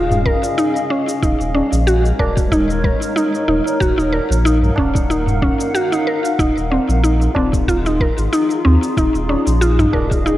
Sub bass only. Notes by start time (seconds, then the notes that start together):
Already playing: D#1
1.22 D#1
1.40 D#1
1.72 A#1
2.19 D#1
3.48 D#1
3.81 D#1
3.98 D#1
4.30 A#1
4.78 D#1
6.39 D#1
6.57 D#1
6.89 A#1
7.36 D#1
8.18 G#1
8.65 D#2
8.97 D#1
9.14 D#1
9.47 A#1
9.93 D#1